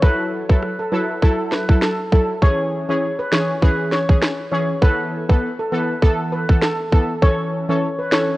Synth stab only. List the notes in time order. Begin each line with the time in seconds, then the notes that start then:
0.02 F#3 E4 A4
0.49 F#3 E4 A4
0.92 F#3 E4 A4
1.22 F#3 E4 A4
1.69 F#3 E4 A4
2.12 F#3 E4 A4
2.42 E3 C#4 G#4
2.89 E3 C#4 G#4
3.32 E3 C#4 G#4
3.62 E3 C#4 G#4
4.09 E3 C#4 G#4
4.52 E3 C#4 G#4
4.82 E3 B3 A4
5.29 E3 B3 A4
5.72 E3 B3 A4
6.02 E3 B3 A4
6.49 E3 B3 A4
6.92 E3 B3 A4
7.22 E3 C#4 A4
7.69 E3 C#4 A4
8.12 E3 C#4 A4